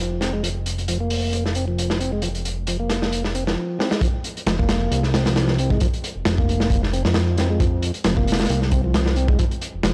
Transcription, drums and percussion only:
0.21 snare soft
0.21 closed hi-hat medium
0.44 closed hi-hat medium
0.66 closed hi-hat medium
0.78 closed hi-hat soft
0.88 closed hi-hat medium
1.10 open hi-hat medium
1.33 closed hi-hat medium
1.46 snare soft
1.55 closed hi-hat medium
1.78 closed hi-hat medium
1.90 snare medium
2.01 closed hi-hat medium
2.22 closed hi-hat medium
2.35 closed hi-hat soft
2.45 closed hi-hat medium
2.67 closed hi-hat medium
2.90 snare soft
2.90 closed hi-hat medium
3.02 snare soft
3.12 closed hi-hat medium
3.24 snare soft
3.35 closed hi-hat medium
3.47 snare medium
3.80 snare medium
3.91 snare medium
4.01 kick loud
4.01 closed hi-hat medium
4.24 closed hi-hat medium
4.37 closed hi-hat soft
4.47 snare loud
4.47 closed hi-hat medium
4.59 kick loud
4.69 snare loud
4.69 closed hi-hat medium
4.92 closed hi-hat medium
5.03 snare soft
5.14 snare loud
5.14 closed hi-hat medium
5.26 snare loud
5.26 closed hi-hat medium
5.36 snare medium
5.36 closed hi-hat medium
5.48 snare medium
5.58 closed hi-hat medium
5.70 kick loud
5.80 kick loud
5.80 closed hi-hat medium
5.93 closed hi-hat soft
6.04 closed hi-hat medium
6.25 snare loud
6.25 closed hi-hat medium
6.38 kick medium
6.49 closed hi-hat medium
6.60 snare medium
6.70 kick loud
6.70 closed hi-hat medium
6.83 snare soft
6.93 closed hi-hat medium
7.05 snare medium
7.14 snare loud
7.14 closed hi-hat medium
7.38 snare medium
7.38 closed hi-hat medium
7.60 kick loud
7.60 closed hi-hat medium
7.82 closed hi-hat medium
7.94 closed hi-hat soft
8.04 snare loud
8.04 closed hi-hat medium
8.17 kick medium
8.28 closed hi-hat medium
8.32 snare medium
8.32 closed hi-hat medium
8.39 snare medium
8.39 closed hi-hat medium
8.44 snare medium
8.44 closed hi-hat medium
8.49 closed hi-hat loud
8.62 snare soft
8.71 kick loud
8.71 closed hi-hat medium
8.94 snare loud
8.94 closed hi-hat medium
9.06 snare soft
9.16 closed hi-hat medium
9.28 kick loud
9.39 kick loud
9.39 closed hi-hat loud
9.51 closed hi-hat soft
9.62 closed hi-hat medium
9.83 snare loud
9.83 closed hi-hat medium

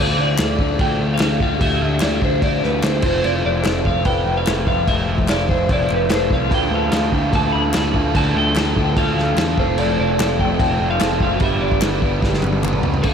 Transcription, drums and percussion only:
0.38 snare loud
0.38 clap loud
0.38 crash medium
0.59 kick medium
0.79 kick loud
0.79 crash medium
1.19 snare loud
1.19 clap loud
1.19 crash medium
1.40 kick medium
1.61 kick loud
1.61 crash medium
2.00 snare loud
2.00 clap medium
2.00 crash medium
2.22 kick medium
2.42 kick loud
2.42 crash medium
2.63 snare soft
2.82 snare loud
2.82 clap medium
2.82 crash medium
3.02 kick loud
3.02 crash medium
3.24 crash medium
3.65 snare loud
3.65 clap medium
3.65 crash medium
3.85 kick medium
4.05 kick loud
4.05 crash medium
4.46 snare loud
4.46 clap loud
4.46 crash medium
4.67 kick medium
4.88 kick loud
4.88 crash medium
5.18 kick medium
5.28 snare loud
5.28 clap loud
5.28 crash medium
5.49 kick medium
5.69 kick loud
5.69 crash medium
5.90 clap medium
6.09 snare loud
6.09 clap loud
6.09 crash medium
6.31 kick medium
6.51 kick loud
6.51 crash medium
6.92 snare loud
6.92 clap loud
6.92 crash medium
7.12 kick medium
7.33 kick loud
7.33 crash medium
7.73 snare loud
7.73 clap loud
7.73 crash medium
7.94 kick medium
8.15 kick loud
8.15 crash medium
8.56 snare loud
8.56 clap medium
8.56 crash medium
8.76 kick medium
8.97 kick loud
8.97 crash medium
9.19 snare soft
9.37 snare loud
9.37 clap medium
9.37 crash medium
9.58 kick loud
9.78 crash medium
10.19 snare loud
10.19 clap loud
10.19 crash medium
10.39 kick medium
10.59 kick loud
10.59 crash medium
11.00 snare loud
11.00 clap loud
11.00 crash medium
11.20 kick medium
11.40 kick loud
11.40 crash medium
11.72 kick medium
11.81 snare loud
11.81 clap loud
11.81 crash medium
12.02 kick medium
12.22 kick loud
12.22 snare medium
12.34 snare medium
12.42 clap medium
12.42 high tom medium
12.53 high tom medium
12.63 clap loud
12.63 mid tom medium
12.73 mid tom medium
12.83 floor tom loud
12.94 floor tom medium
13.03 kick loud
13.03 crash medium

